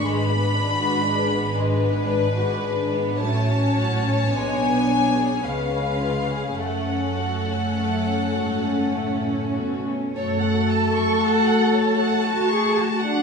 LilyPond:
<<
  \new Staff \with { instrumentName = "Violin section" } { \time 3/4 \key fis \minor \tempo 4 = 55 b''4. b'4. | a''4 gis''4 eis''4 | fis''2~ fis''8 r8 | r4 fis''8 a''4. | }
  \new Staff \with { instrumentName = "Violin section" } { \time 3/4 \key fis \minor << { b'2. | cis''2 b'4 | a'2. | cis''2. | } \\ { gis16 b16 d'16 fis'16 d'16 b16 gis16 b16 d'16 fis'16 d'16 b16 | a16 cis'16 fis'16 cis'16 gis16 b16 d'16 gis'16 b16 cis'16 eis'16 gis'16 | a16 cis'16 fis'16 cis'16 a16 cis'16 fis'16 cis'16 a16 cis'16 fis'16 cis'16 | cis''16 fis''16 a''16 cis'''16 a''16 fis''16 cis''16 fis''16 a''16 cis'''16 a''16 fis''16 | } >> }
  \new Staff \with { instrumentName = "Viola section" } { \time 3/4 \key fis \minor << { d'2. | cis'4 d'4 cis'4~ | cis'2. | fis'2. | } \\ { gis2. | fis4 b4 gis4 | a2. | a2. | } >> }
  \new Staff \with { instrumentName = "Cello section" } { \clef bass \time 3/4 \key fis \minor << { gis,2. | a,4 b,4 cis4 | fis,4 r8 cis'4. | a'2 fis'16 gis'16 fis'16 d'16 | } \\ { r2. | r2. | r4 fis,8 gis,8 a,8 b,8 | r2. | } >> }
  \new Staff \with { instrumentName = "Double bass section" } { \clef bass \time 3/4 \key fis \minor gis,,2. | a,,4 b,,4 cis,4 | fis,,2. | fis,4 r2 | }
>>